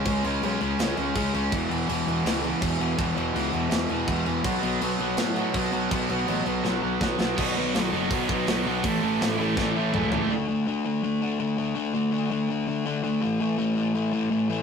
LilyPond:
<<
  \new Staff \with { instrumentName = "Distorted electric guitar" } { \clef bass \time 4/4 \key b \mixolydian \tempo 4 = 164 r1 | r1 | r1 | r1 |
r1 | <b, dis fis b dis'>4. <b, dis fis b dis'>4. <b, dis fis b dis'>4 | <a, e a cis' e'>4. <a, e a cis' e'>4. <a, e a cis' e'>4 | \key d \lydian r1 |
r1 | r1 | }
  \new Staff \with { instrumentName = "Overdriven electric guitar" } { \clef bass \time 4/4 \key b \mixolydian <cis gis cis'>8 <cis gis cis'>8 <cis gis cis'>8 <cis gis cis'>8 <cis gis cis'>8 <cis gis cis'>8 <cis gis cis'>8 <cis gis cis'>8 | <e, b, e>8 <e, b, e>8 <e, b, e>8 <e, b, e>8 <e, b, e>8 <e, b, e>8 <e, b, e>8 <e, b, e>8 | <e, b, e>8 <e, b, e>8 <e, b, e>8 <e, b, e>8 <e, b, e>8 <e, b, e>8 <e, b, e>8 <e, b, e>8 | <b, fis b>8 <b, fis b>8 <b, fis b>8 <b, fis b>8 <b, fis b>8 <b, fis b>8 <b, fis b>8 <b, fis b>8 |
<b, fis b>8 <b, fis b>8 <b, fis b>8 <b, fis b>8 <b, fis b>8 <b, fis b>8 <b, fis b>8 <b, fis b>8 | <b, fis b>8 <b, fis b>8 <b, fis b>8 <b, fis b>8 <b, fis b>8 <b, fis b>8 <b, fis b>8 <b, fis b>8 | <a, e a>8 <a, e a>8 <a, e a>8 <a, e a>8 <a, e a>8 <a, e a>8 <a, e a>8 <a, e a>8 | \key d \lydian <d a d'>8 <d a d'>8 <d a d'>8 <d a d'>8 <d a d'>8 <d a d'>8 <d a d'>8 <d a d'>8 |
<d a d'>8 <d a d'>8 <d a d'>8 <d a d'>8 <d a d'>8 <d a d'>8 <d a d'>8 <d a d'>8 | <a, e a>8 <a, e a>8 <a, e a>8 <a, e a>8 <a, e a>8 <a, e a>8 <a, e a>8 <a, e a>8 | }
  \new Staff \with { instrumentName = "Overdriven electric guitar" } { \clef bass \time 4/4 \key b \mixolydian <cis gis cis'>8 <cis gis cis'>8 <cis gis cis'>8 <cis gis cis'>8 <cis gis cis'>8 <cis gis cis'>8 <cis gis cis'>8 <cis gis cis'>8 | <e, b, e>8 <e, b, e>8 <e, b, e>8 <e, b, e>8 <e, b, e>8 <e, b, e>8 <e, b, e>8 <e, b, e>8 | <e, b, e>8 <e, b, e>8 <e, b, e>8 <e, b, e>8 <e, b, e>8 <e, b, e>8 <e, b, e>8 <e, b, e>8 | <b, fis b>8 <b, fis b>8 <b, fis b>8 <b, fis b>8 <b, fis b>8 <b, fis b>8 <b, fis b>8 <b, fis b>8 |
<b, fis b>8 <b, fis b>8 <b, fis b>8 <b, fis b>8 <b, fis b>8 <b, fis b>8 <b, fis b>8 <b, fis b>8 | <b, fis b>8 <b, fis b>8 <b, fis b>8 <b, fis b>8 <b, fis b>8 <b, fis b>8 <b, fis b>8 <b, fis b>8 | <a, e a>8 <a, e a>8 <a, e a>8 <a, e a>8 <a, e a>8 <a, e a>8 <a, e a>8 <a, e a>8 | \key d \lydian r1 |
r1 | r1 | }
  \new Staff \with { instrumentName = "Picked electric bass" } { \clef bass \time 4/4 \key b \mixolydian cis,8 cis,8 b,,8 cis,8 cis,8 cis,8 cis,8 cis,8 | e,,8 e,,8 e,,8 e,,8 cis,4 e,,8 e,,8 | e,,8 e,,8 cis,8 e,,8 e,,8 e,,8 e,,8 e,,8 | b,,8 b,,8 b,,8 b,,8 a,4 b,,8 b,,8 |
b,,8 b,,8 a,,8 b,,8 b,,8 b,,8 b,,8 b,,8 | b,,8 b,,8 b,,8 fis,,8 b,,8 b,,8 b,,8 b,,8 | a,,8 a,,8 a,,8 a,,8 a,,8 a,,8 cis,4 | \key d \lydian r1 |
r1 | r1 | }
  \new DrumStaff \with { instrumentName = "Drums" } \drummode { \time 4/4 <cymc bd>8 cymc8 cymc8 cymc8 <cymc sn>8 cymc8 <cymc bd>8 cymc8 | <cymc bd>8 cymc8 cymc8 cymc8 <cymc sn>8 cymc8 <cymc bd>8 cymc8 | <cymc bd>8 cymc8 cymc8 cymc8 <cymc sn>8 cymc8 <cymc bd>8 cymc8 | <cymc bd>8 cymc8 cymc8 cymc8 <cymc sn>8 cymc8 <cymc bd>8 cymc8 |
<cymc bd>8 cymc8 cymc8 cymc8 sn4 <bd sn>8 sn8 | <cymc bd>4 <hho sn>4 <hho bd>8 bd8 <hho sn>4 | <hho bd>4 <hho sn>4 <bd sn>4 toml8 tomfh8 | r4 r4 r4 r4 |
r4 r4 r4 r4 | r4 r4 r4 r4 | }
>>